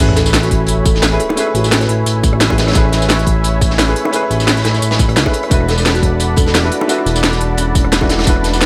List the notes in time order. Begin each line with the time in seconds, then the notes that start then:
Already playing: A3
0.00 A1 C#4 E4 G#4 B4 C#5 E5 G#5 B5, sub drop
0.09 cross-stick
0.16 A1 A4, snare, closed hi-hat, tambourine
0.25 snare, tambourine
0.33 snare, closed hi-hat, tambourine
0.43 F#4, snare, closed hi-hat
0.51 A1, kick, closed hi-hat
0.67 closed hi-hat
0.68 closed hi-hat, tambourine
0.85 A4, kick, closed hi-hat, tambourine
0.95 A4, snare
1.02 snare, closed hi-hat, tambourine
1.11 A3 C#4 E4 G#4 B4, closed hi-hat
1.20 A4, closed hi-hat
1.29 cross-stick, high bongo
1.35 A3 C#4 E4 G#4, closed hi-hat, tambourine
1.40 B4
1.47 cross-stick
1.54 A1 F#4, closed hi-hat, tambourine
1.64 snare, tambourine
1.71 snare, closed hi-hat, open hi-hat, tambourine
1.81 B4, snare, closed hi-hat
1.89 A1, closed hi-hat
2.06 A1, closed hi-hat, tambourine
2.23 kick, closed hi-hat, tambourine
2.33 A1, cross-stick
2.40 snare, closed hi-hat, tambourine
2.49 A3 C#4 E4 G#4 B4, kick, cross-stick, high bongo
2.58 snare, closed hi-hat
2.67 cross-stick, snare, closed hi-hat
2.72 A3 C#4, snare, closed hi-hat
2.75 A1 E4 G#4 B4, kick, closed hi-hat, tambourine
2.85 cross-stick
2.92 A1, snare, closed hi-hat, tambourine
3.01 snare, tambourine
3.09 snare, closed hi-hat, tambourine
3.18 snare, closed hi-hat
3.26 A1, kick, closed hi-hat
3.44 closed hi-hat, tambourine
3.61 kick, closed hi-hat, tambourine
3.70 snare
3.78 snare, closed hi-hat, tambourine
3.87 A3 C#4 E4 G#4 B4, closed hi-hat
3.96 closed hi-hat
4.05 cross-stick, high bongo
4.11 A3 C#4 E4 G#4, closed hi-hat, tambourine
4.15 B4
4.23 cross-stick
4.30 A1, closed hi-hat, tambourine
4.40 snare, tambourine
4.47 snare, closed hi-hat, open hi-hat, tambourine
4.57 snare, closed hi-hat
4.64 A1, snare, closed hi-hat
4.74 snare, tambourine
4.82 A1, closed hi-hat, tambourine
4.91 snare, closed hi-hat
4.99 kick, snare, closed hi-hat, tambourine
5.08 A1, cross-stick, closed hi-hat
5.16 C#2, snare, closed hi-hat, tambourine
5.25 A3 C#4 E4 G#4 B4, kick, cross-stick, high bongo
5.33 closed hi-hat
5.43 cross-stick, closed hi-hat
5.49 E1 A3 D4 E4 F#4 D5 F#5 A5, kick, closed hi-hat, tambourine
5.53 B4
5.61 cross-stick
5.68 E1 A4, snare, closed hi-hat, tambourine
5.78 snare, tambourine
5.85 snare, closed hi-hat, tambourine
5.95 F#4, snare, closed hi-hat
6.03 E1, kick, closed hi-hat
6.20 closed hi-hat, tambourine
6.36 A4, kick, closed hi-hat, tambourine
6.46 A4, snare
6.55 snare, closed hi-hat, tambourine
6.63 A3 D4 E4 F#4 B4, closed hi-hat
6.72 F#4, closed hi-hat
6.81 cross-stick, high bongo
6.87 A3 D4 E4 F#4, closed hi-hat, tambourine
6.91 B4
6.98 E4, cross-stick
7.06 E1, closed hi-hat, tambourine
7.15 snare, tambourine
7.23 snare, closed hi-hat, open hi-hat, tambourine
7.32 snare, closed hi-hat
7.40 E1, closed hi-hat
7.57 E1 C#4, closed hi-hat, tambourine
7.75 C#4, kick, closed hi-hat, tambourine
7.84 E1, cross-stick
7.92 snare, closed hi-hat, tambourine
8.01 A3 D4 E4 F#4 B4, kick, cross-stick, high bongo
8.09 E4, snare, closed hi-hat
8.19 cross-stick, snare, closed hi-hat
8.23 E1 A3 D4, snare, closed hi-hat
8.27 E4 F#4 B4, kick, closed hi-hat, tambourine
8.36 cross-stick
8.44 E1, snare, closed hi-hat, tambourine
8.53 snare, tambourine
8.61 snare, closed hi-hat, tambourine